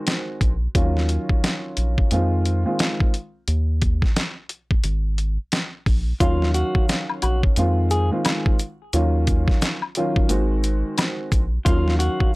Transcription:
Already playing: D#3 G#3 C4 F#4
0.07 snare, closed hi-hat
0.41 A#1, kick, closed hi-hat
0.75 D#2 D#3 F#3 C#4 F4, kick, closed hi-hat
0.97 snare
1.09 closed hi-hat
1.29 kick
1.44 snare, closed hi-hat
1.77 A#1, closed hi-hat
1.98 kick
2.11 F2 D#3 G#3 C4 F4, closed hi-hat
2.45 closed hi-hat
2.65 D#3 G#3 C4 F4
2.79 snare, closed hi-hat
3.00 kick
3.14 closed hi-hat
3.48 D#2, closed hi-hat
3.82 kick, closed hi-hat
4.02 kick, snare
4.16 snare, closed hi-hat
4.49 closed hi-hat
4.71 kick
4.84 G#1, closed hi-hat
5.18 closed hi-hat
5.52 snare, closed hi-hat
5.86 A#1, kick, open hi-hat
6.20 D#2 D#3 F#3 C#4 F4 F5, kick, closed hi-hat, maracas
6.42 snare
6.54 F#4, closed hi-hat, maracas
6.75 kick
6.89 snare, closed hi-hat, maracas
7.09 high woodblock
7.22 A#1 F#4, closed hi-hat, high woodblock, maracas
7.43 kick
7.56 F2 D#3 G#3 C4 F4, closed hi-hat, maracas
7.91 G#4, closed hi-hat, maracas
8.11 D#3 G#3 C4 F4
8.25 snare, closed hi-hat, high woodblock, maracas
8.46 kick
8.59 closed hi-hat, maracas
8.93 D#2 D#3 F#3 C#4 F4, closed hi-hat, maracas
9.27 kick, closed hi-hat, maracas
9.48 kick, snare
9.62 snare, closed hi-hat, maracas
9.82 high woodblock
9.95 D#3 F#3 C#4 F4, closed hi-hat, maracas
10.16 kick
10.29 G#1 D#3 G#3 C4 F#4, closed hi-hat, maracas
10.63 closed hi-hat, maracas
10.98 snare, closed hi-hat, high woodblock, maracas
11.32 A#1, kick, closed hi-hat, maracas
11.65 D#2 D#3 F#3 C#4 F4 F5, kick, closed hi-hat, maracas
11.88 snare
11.99 F#4, closed hi-hat, maracas
12.20 kick

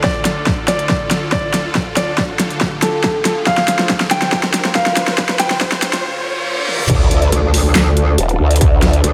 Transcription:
Already playing: D2 D3 F4, riser
0.04 A4 D5, kick, snare
0.25 snare, closed hi-hat
0.47 kick, snare
0.68 D5, snare, closed hi-hat
0.79 closed hi-hat
0.89 kick, snare
1.11 snare, closed hi-hat
1.32 D5, kick, snare
1.54 snare, closed hi-hat
1.75 kick, snare
1.97 D5, snare, closed hi-hat
2.18 kick, snare
2.40 snare, closed hi-hat
2.50 closed hi-hat
2.61 kick, snare
2.82 A4, snare, closed hi-hat
3.04 kick, snare
3.25 snare, closed hi-hat
3.47 C5 F5, kick, snare
3.58 snare
3.68 snare, closed hi-hat
3.79 snare
3.89 kick, snare
4.00 snare
4.11 G5, snare, closed hi-hat
4.22 snare, closed hi-hat
4.32 kick, snare
4.43 snare
4.54 snare, closed hi-hat
4.65 snare
4.75 F5, kick, snare
4.86 snare
4.97 snare, closed hi-hat
5.08 snare
5.18 kick, snare
5.29 snare
5.39 G5, snare, closed hi-hat
5.51 snare
5.61 kick, snare
5.72 snare
5.82 snare, closed hi-hat
5.93 snare, closed hi-hat
6.04 reverse cymbal
6.68 high tom
6.79 mid tom
6.89 D2 D3 D4 F4 A4, kick, closed hi-hat, crash, impact
7.11 closed hi-hat
7.22 closed hi-hat
7.32 D2, closed hi-hat
7.54 open hi-hat
7.75 D2, snare, clap, closed hi-hat
7.97 closed hi-hat
8.18 D#1, closed hi-hat
8.29 closed hi-hat
8.40 D2
8.51 closed hi-hat
8.56 closed hi-hat
8.61 D2, kick, closed hi-hat
8.82 snare, closed hi-hat
8.93 closed hi-hat
9.04 D2, closed hi-hat

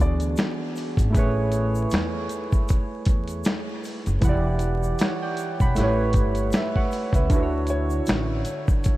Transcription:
Already playing: E3 B3 D4 F#4 G#4
0.00 D2 D5, shaker
0.20 closed hi-hat, shaker
0.37 finger snap, snare, closed hi-hat, shaker
0.76 open hi-hat, shaker
0.97 G#1, kick, closed hi-hat, shaker
1.10 A3 E4
1.14 A1 G#4 B4, kick, closed hi-hat, shaker
1.19 C#5
1.52 closed hi-hat, shaker
1.75 shaker
1.91 E2, snare, closed hi-hat, shaker
1.95 finger snap
2.29 closed hi-hat, shaker
2.52 kick, shaker
2.69 kick, closed hi-hat, shaker
3.05 E2, kick, closed hi-hat, shaker
3.27 closed hi-hat, shaker
3.44 finger snap, snare, closed hi-hat, shaker
3.84 open hi-hat, shaker
4.06 F#1, closed hi-hat, shaker
4.21 E1 E3 E4 F#5, kick, closed hi-hat, shaker
4.27 G4 D5
4.59 closed hi-hat, shaker
4.83 shaker
4.99 C#5 F#5, finger snap, snare, closed hi-hat, shaker
5.22 D5 G5
5.37 closed hi-hat, shaker
5.60 E1 F#5 B5, kick, shaker
5.75 A1 A3 E4, snare, closed hi-hat, shaker
5.79 G4 B4 C#5
6.13 G1, kick, closed hi-hat, shaker
6.35 closed hi-hat, shaker
6.52 E5, finger snap, snare, closed hi-hat, shaker
6.56 B4
6.76 C#5 F#5, kick
6.92 open hi-hat, shaker
7.13 C#2 B4 E5, kick, closed hi-hat, shaker
7.28 D2 D3 D4 E4, kick, closed hi-hat, shaker
7.34 F#4 B4
7.43 C#5
7.67 C#5, closed hi-hat, shaker
7.90 shaker
8.06 A1, snare, closed hi-hat, shaker
8.10 finger snap
8.45 closed hi-hat, shaker
8.68 kick, shaker
8.84 kick, closed hi-hat, shaker

